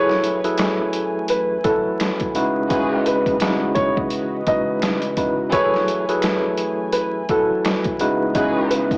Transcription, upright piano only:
0.00 1.25 C#5 loud
1.30 1.61 B4 medium
1.64 1.96 A4 medium
3.07 3.38 B4 medium
3.75 3.94 C#5 medium
4.48 4.79 D#5 medium
5.52 6.90 C#5 medium
6.93 7.25 B4 medium
7.31 7.62 A4 medium
8.70 8.98 B4 medium

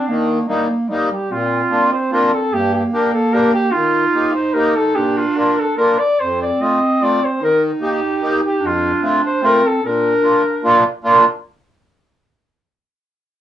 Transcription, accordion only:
0.09 0.39 D#3 medium
0.48 0.68 G3 medium
0.48 0.68 A#3 medium
0.48 0.68 D#4 medium
0.90 1.10 G3 medium
0.90 1.09 A#3 medium
0.90 1.09 D#4 medium
1.31 1.62 A#2 medium
1.71 1.91 A#3 medium
1.71 1.91 D4 medium
1.71 1.91 F4 soft
2.11 2.31 A#3 medium
2.11 2.32 D4 medium
2.11 2.31 F4 medium
2.52 2.83 G2 medium
2.93 3.12 A#3 medium
2.93 3.13 D4 soft
2.93 3.12 G4 medium
3.33 3.53 A#3 medium
3.33 3.53 D4 medium
3.33 3.53 G4 medium
3.75 4.05 D#3 medium
4.14 4.33 A#3 medium
4.14 4.34 D#4 soft
4.14 4.34 G4 medium
4.54 4.74 A#3 medium
4.54 4.74 D#4 medium
4.54 4.74 G4 medium
4.94 5.25 A#2 medium
5.37 5.56 A#3 medium
5.37 5.56 D4 soft
5.37 5.56 F4 medium
5.78 5.97 A#3 medium
5.78 5.97 D4 medium
5.78 5.97 F4 medium
6.20 6.50 F2 medium
6.60 6.79 A3 medium
6.60 6.79 C4 medium
6.60 6.80 F4 soft
7.00 7.20 A3 medium
7.00 7.20 C4 medium
7.00 7.20 F4 medium
7.41 7.71 D#3 medium
7.81 8.00 A#3 medium
7.81 8.00 D#4 medium
7.81 8.00 G4 medium
8.21 8.40 A#3 medium
8.21 8.41 D#4 medium
8.21 8.41 G4 medium
8.62 8.92 F2 medium
9.02 9.21 A3 medium
9.02 9.21 C4 soft
9.02 9.21 F4 medium
9.42 9.61 A3 medium
9.42 9.62 C4 medium
9.42 9.62 F4 medium
9.83 10.14 A#2 medium
10.22 10.42 A#3 medium
10.22 10.42 D4 soft
10.22 10.43 F4 medium
10.64 10.84 A#3 medium
10.64 10.84 D4 medium
10.64 10.84 F4 medium
11.04 11.25 A#3 medium
11.04 11.25 D4 medium
11.04 11.24 F4 medium

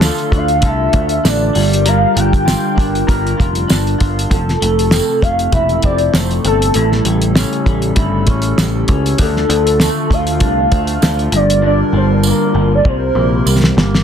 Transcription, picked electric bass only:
0.32 0.63 D2 loud
0.63 0.87 C2 loud
0.93 1.18 D2 loud
1.25 1.49 A1 medium
1.56 2.04 G1 loud
2.16 2.54 G1 medium
2.77 3.02 G1 loud
3.08 3.32 G1 medium
3.40 3.64 F1 medium
3.70 3.94 G1 medium
4.01 4.25 G1 medium
4.30 4.55 F1 loud
4.62 5.00 F1 medium
5.22 5.47 F1 medium
5.52 5.77 E1 medium
5.83 6.08 F1 medium
6.14 6.38 F1 medium
6.45 6.69 G1 loud
6.76 7.00 A1 loud
7.05 7.43 A1 medium
7.66 7.91 A1 medium
7.96 8.28 G1 medium
8.28 8.52 A1 medium
8.58 8.83 A1 medium
8.88 9.13 C#2 loud
9.19 9.44 D2 loud
9.49 9.88 D2 loud
10.10 10.41 D2 loud
10.41 10.66 C2 medium
10.72 10.96 D2 loud
11.02 11.27 D2 medium
11.32 11.82 G1 loud
11.93 12.31 G1 loud
12.55 12.80 G1 loud
12.85 13.10 C2 medium
13.15 13.40 A#1 loud
13.46 13.71 C2 medium
13.77 14.02 G1 loud

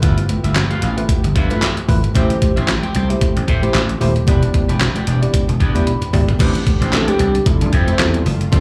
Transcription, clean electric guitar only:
0.02 0.24 F4 medium
0.02 0.17 B4 medium
0.02 0.16 E5 medium
0.17 muted clean electric guitar stroke soft
0.29 muted clean electric guitar stroke soft
0.44 0.54 F4 soft
0.44 0.55 B4 medium
0.44 0.56 E5 medium
0.56 muted clean electric guitar stroke soft
0.71 0.81 F4 medium
0.71 0.82 B4 medium
0.71 0.83 F5 medium
0.82 1.00 F4 medium
0.82 0.97 B4 medium
0.82 0.97 F5 medium
0.97 muted clean electric guitar stroke medium
1.09 muted clean electric guitar stroke soft
1.24 muted clean electric guitar stroke medium
1.35 1.51 F4 medium
1.35 1.50 B4 medium
1.35 1.49 E5 medium
1.50 1.61 F4 medium
1.50 1.62 B4 medium
1.50 1.62 E5 medium
1.62 muted clean electric guitar stroke soft
1.77 muted clean electric guitar stroke soft
2.04 muted clean electric guitar stroke soft
2.15 2.36 G4 medium
2.15 2.30 C5 medium
2.15 2.29 E5 medium
2.30 muted clean electric guitar stroke soft
2.42 muted clean electric guitar stroke soft
2.56 2.67 G4 medium
2.56 2.68 C5 medium
2.56 2.68 E5 medium
2.68 muted clean electric guitar stroke soft
2.83 2.93 G4 medium
2.83 2.94 C5 medium
2.83 2.95 G5 medium
2.94 3.12 G4 medium
2.94 3.09 C5 medium
2.94 3.09 G5 medium
3.09 muted clean electric guitar stroke soft
3.21 muted clean electric guitar stroke soft
3.36 muted clean electric guitar stroke soft
3.47 3.63 G4 medium
3.47 3.62 C5 medium
3.47 3.61 E5 medium
3.62 3.73 G4 soft
3.62 3.74 C5 medium
3.62 3.74 E5 medium
3.74 muted clean electric guitar stroke soft
3.89 muted clean electric guitar stroke soft
4.16 muted clean electric guitar stroke medium
4.27 4.49 D4 medium
4.27 4.43 G4 medium
4.27 4.41 B4 medium
4.42 muted clean electric guitar stroke soft
4.54 muted clean electric guitar stroke soft
4.69 4.79 D4 medium
4.69 4.80 G4 medium
4.69 4.81 B4 medium
4.95 5.06 D4 medium
4.95 5.07 G4 medium
4.95 5.08 D5 medium
5.07 5.24 D4 medium
5.07 5.22 G4 medium
5.07 5.21 D5 medium
5.22 muted clean electric guitar stroke soft
5.33 muted clean electric guitar stroke soft
5.48 muted clean electric guitar stroke medium
5.60 5.76 D4 medium
5.60 5.75 G4 medium
5.60 5.74 B4 medium
5.75 5.85 D4 soft
5.75 5.86 G4 medium
5.75 5.87 B4 medium
5.86 muted clean electric guitar stroke soft
6.01 muted clean electric guitar stroke medium
6.28 muted clean electric guitar stroke medium
6.39 6.61 D4 medium
6.39 6.55 G4 medium
6.39 6.53 C5 medium
6.55 muted clean electric guitar stroke soft
6.66 muted clean electric guitar stroke soft
6.81 6.92 D4 medium
6.81 6.92 G4 medium
6.81 6.93 C5 medium
6.93 muted clean electric guitar stroke soft
7.07 7.18 D4 medium
7.07 7.19 G4 medium
7.07 7.20 D5 medium
7.19 7.37 D4 medium
7.19 7.34 G4 medium
7.19 7.34 D5 medium
7.34 muted clean electric guitar stroke soft
7.46 muted clean electric guitar stroke soft
7.61 muted clean electric guitar stroke soft
7.72 7.88 G4 medium
7.72 7.87 A4 medium
7.72 7.86 E5 loud
7.87 7.98 G4 soft
7.87 7.99 A4 soft
7.87 7.99 E5 medium
7.99 muted clean electric guitar stroke medium
8.14 muted clean electric guitar stroke soft
8.41 muted clean electric guitar stroke soft
8.52 8.60 F4 medium
8.52 8.60 A4 medium
8.52 8.60 C5 medium

